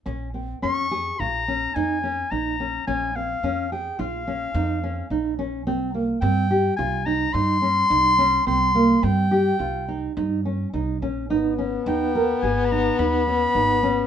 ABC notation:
X:1
M:5/4
L:1/16
Q:1/4=107
K:Bbdor
V:1 name="Clarinet"
z4 d'4 b4 a4 b4 | a2 f4 g2 f8- f2 z2 | z4 g4 a2 b2 c'8 | c'4 g8 z8 |
z4 g4 a3/2 _c'/2 b2 c'8 |]
V:2 name="Nylon-string guitar"
D2 C2 D2 A2 F2 D2 E2 D2 E2 D2 | D2 C2 D2 A2 F2 D2 E2 D2 E2 D2 | C2 B,2 C2 G2 F2 E2 E2 D2 E2 D2 | C2 B,2 C2 G2 F2 E2 E2 D2 E2 D2 |
E2 D2 E2 B2 A2 E2 E2 D2 E2 D2 |]
V:3 name="French horn"
z16 z4 | z16 z4 | z16 z4 | z16 z4 |
_C16- C4 |]
V:4 name="Upright bass" clef=bass
B,,,4 F,,4 B,,,4 F,,4 B,,,4 | B,,,4 F,,4 B,,,4 F,,4 B,,,4 | C,,4 G,,4 C,,4 G,,4 C,,4 | C,,4 G,,4 C,,4 G,,4 C,,2 B,,,2 |
A,,,4 E,,4 A,,,4 E,,4 A,,,4 |]